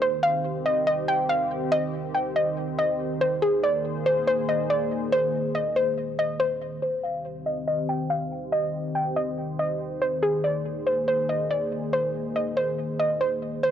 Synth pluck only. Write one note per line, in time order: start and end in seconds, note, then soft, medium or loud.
0.02 0.18 C5 medium
0.23 0.40 F5 medium
0.66 0.82 D#5 medium
0.87 1.04 D#5 loud
1.08 1.25 G5 medium
1.29 1.69 F5 medium
1.72 2.12 D#5 loud
2.15 2.31 G5 medium
2.36 2.76 D#5 medium
2.79 3.18 D#5 medium
3.21 3.38 C5 medium
3.42 3.59 G#4 loud
3.63 3.80 D5 medium
4.06 4.23 C5 medium
4.27 4.44 C5 loud
4.49 4.65 D#5 medium
4.70 5.10 D5 medium
5.12 5.52 C5 loud
5.55 5.72 D#5 medium
5.76 6.16 C5 medium
6.19 6.36 D#5 medium
6.40 6.80 C5 medium
6.82 6.99 C5 medium
7.03 7.20 F5 medium
7.46 7.63 D#5 medium
7.67 7.84 D#5 medium
7.89 8.06 G5 medium
8.10 8.50 F5 medium
8.52 8.92 D#5 loud
8.95 9.12 G5 medium
9.16 9.56 D#5 medium
9.59 9.99 D#5 medium
10.02 10.18 C5 medium
10.23 10.39 G#4 medium
10.44 10.61 D5 medium
10.87 11.03 C5 medium
11.08 11.25 C5 medium
11.29 11.46 D#5 medium
11.51 11.91 D5 medium
11.93 12.33 C5 loud
12.36 12.52 D#5 medium
12.57 12.97 C5 medium
12.99 13.16 D#5 medium
13.21 13.61 C5 medium
13.63 13.71 C5 medium